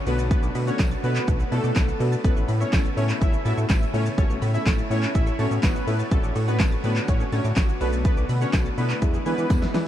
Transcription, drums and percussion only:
0.07 open hi-hat, shaker
0.19 shaker
0.31 kick, closed hi-hat, shaker
0.43 shaker
0.55 open hi-hat, shaker
0.68 shaker
0.79 kick, snare, clap, closed hi-hat, tambourine, shaker
0.91 shaker
1.04 open hi-hat, shaker
1.16 clap, shaker
1.28 kick, closed hi-hat, shaker
1.40 shaker
1.52 open hi-hat, shaker
1.64 shaker
1.76 kick, snare, clap, closed hi-hat, tambourine, shaker
1.89 shaker
2.00 open hi-hat, shaker
2.12 shaker
2.24 kick, closed hi-hat, shaker
2.37 shaker
2.49 open hi-hat, shaker
2.61 shaker
2.73 kick, snare, clap, closed hi-hat, tambourine, shaker
2.85 shaker
2.97 open hi-hat, shaker
3.09 clap, shaker
3.22 kick, closed hi-hat, shaker
3.33 shaker
3.46 open hi-hat, shaker
3.58 shaker
3.69 kick, snare, clap, closed hi-hat, tambourine, shaker
3.82 shaker
3.94 open hi-hat, shaker
4.06 shaker
4.18 kick, closed hi-hat, shaker
4.30 shaker
4.42 open hi-hat, shaker
4.55 shaker
4.66 kick, snare, clap, closed hi-hat, tambourine, shaker
4.79 shaker
4.91 open hi-hat, shaker
5.03 clap, shaker
5.15 kick, closed hi-hat, shaker
5.27 shaker
5.39 open hi-hat, shaker
5.51 shaker
5.63 kick, snare, clap, closed hi-hat, tambourine, shaker
5.76 shaker
5.88 open hi-hat, shaker
6.00 shaker
6.12 kick, closed hi-hat, shaker
6.24 shaker
6.36 open hi-hat, shaker
6.48 shaker
6.60 kick, snare, clap, closed hi-hat, tambourine, shaker
6.72 shaker
6.84 open hi-hat, shaker
6.96 clap, shaker
7.08 kick, closed hi-hat, shaker
7.20 shaker
7.32 open hi-hat, shaker
7.45 shaker
7.56 kick, snare, clap, closed hi-hat, tambourine, shaker
7.69 shaker
7.81 open hi-hat, shaker
7.93 shaker
8.05 kick, closed hi-hat, shaker
8.17 shaker
8.29 open hi-hat, shaker
8.42 shaker
8.53 kick, snare, clap, closed hi-hat, tambourine, shaker
8.65 shaker
8.78 open hi-hat, shaker
8.90 clap, shaker
9.02 kick, closed hi-hat, shaker
9.14 shaker
9.26 open hi-hat, shaker
9.38 shaker
9.50 kick, snare, closed hi-hat, tambourine, shaker
9.62 snare, shaker
9.74 snare, open hi-hat, shaker

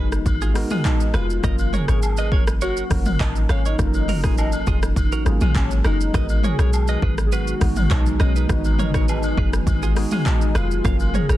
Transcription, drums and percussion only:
0.12 cross-stick, shaker
0.26 kick, high agogo, shaker
0.42 shaker
0.55 cross-stick, open hi-hat, shaker
0.70 mid tom, high agogo, shaker
0.85 kick, clap, low woodblock, shaker
1.00 shaker
1.14 cross-stick, high agogo, shaker
1.30 shaker
1.44 kick, cross-stick, shaker
1.58 high agogo, shaker
1.73 mid tom, shaker
1.88 cross-stick, shaker
2.03 low woodblock, shaker
2.17 high agogo, shaker
2.32 kick
2.47 cross-stick, shaker
2.61 high agogo, shaker
2.77 shaker
2.91 kick, cross-stick, open hi-hat, shaker
3.05 mid tom, high agogo, shaker
3.20 kick, clap, low woodblock, shaker
3.36 shaker
3.49 cross-stick, high agogo, shaker
3.65 shaker
3.79 kick, cross-stick, shaker
3.94 high agogo, shaker
4.08 mid tom, open hi-hat, shaker
4.24 kick, cross-stick, shaker
4.38 low woodblock, shaker
4.52 high agogo, shaker
4.67 kick, shaker
4.83 cross-stick, shaker
4.96 kick, high agogo, shaker
5.12 shaker
5.26 cross-stick, shaker
5.41 mid tom, high agogo, shaker
5.55 kick, clap, low woodblock, shaker
5.71 shaker
5.85 cross-stick, high agogo, shaker
6.01 shaker
6.14 kick, cross-stick, shaker
6.29 high agogo, shaker
6.43 mid tom, shaker
6.59 cross-stick, shaker
6.73 low woodblock, shaker
6.88 high agogo, shaker
7.02 kick
7.18 cross-stick, shaker
7.32 high agogo, shaker
7.47 shaker
7.61 kick, cross-stick, open hi-hat, shaker
7.76 mid tom, high agogo, shaker
7.91 kick, clap, low woodblock, shaker
8.06 shaker
8.20 cross-stick, high agogo, shaker
8.36 shaker
8.49 kick, cross-stick, shaker
8.64 high agogo, shaker
8.79 mid tom, shaker
8.94 kick, cross-stick, shaker
9.08 low woodblock, shaker
9.23 high agogo, shaker
9.38 kick
9.53 cross-stick, shaker
9.67 kick, high agogo, shaker
9.83 shaker
9.96 cross-stick, open hi-hat, shaker
10.11 mid tom, high agogo, shaker
10.26 kick, clap, low woodblock, shaker
10.41 shaker
10.55 cross-stick, high agogo, shaker
10.71 shaker
10.85 kick, cross-stick, shaker
11.00 high agogo, shaker
11.14 mid tom, shaker
11.29 cross-stick, shaker

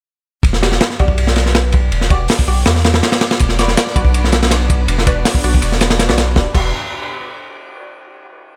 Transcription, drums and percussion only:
0.43 kick, ride
0.53 snare
0.63 snare, ride
0.72 snare
0.81 snare, ride
0.90 snare
0.99 kick, ride
1.08 kick
1.18 ride
1.27 snare
1.36 snare, ride
1.46 snare
1.55 snare, ride
1.72 kick, ride
1.92 ride
2.01 snare
2.10 kick, ride
2.28 snare, open hi-hat
2.39 kick
2.66 snare, ride
2.75 snare
2.84 snare, ride
2.94 snare
3.03 snare, ride
3.12 snare, ride
3.21 snare, ride
3.31 snare, ride
3.39 kick, ride, tambourine
3.49 snare
3.59 snare, ride, tambourine
3.68 snare
3.77 snare, ride, tambourine
3.87 snare
3.96 kick, ride, tambourine
4.05 kick
4.14 ride, tambourine
4.24 snare
4.32 snare, ride, tambourine
4.43 snare, ride
4.51 snare, ride, tambourine
4.70 kick, ride, tambourine
4.88 ride, tambourine
4.98 snare
5.07 kick, snare, ride, tambourine
5.25 snare, open hi-hat, tambourine
5.34 kick
5.44 ride, tambourine
5.53 kick, snare
5.62 ride, tambourine
5.72 snare
5.81 snare, ride, tambourine
5.90 snare, ride
5.99 snare, ride, tambourine
6.09 snare, ride
6.18 snare, ride, tambourine
6.36 kick, snare
6.55 kick, crash

